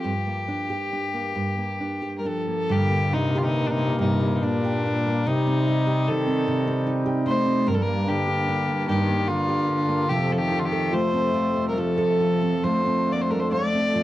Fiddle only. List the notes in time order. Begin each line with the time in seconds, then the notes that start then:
0.02 G4
2.19 A#4
2.26 A4
2.71 G4
3.13 D#4
3.38 F4
3.43 D#4
3.66 D4 D#4
4.00 D#4
4.35 D#4
4.43 D4
5.26 D#4
6.08 A4
7.27 C5
7.68 A#4
7.74 A4
7.82 A#4
8.08 G4
8.88 G4
9.28 F4
10.09 G4
10.32 A4
10.37 G4
10.59 F4
10.65 G4
10.93 C5
11.68 A#4
11.78 A4
12.63 C5
13.12 D5
13.21 C5
13.30 A#4
13.39 C5
13.52 D5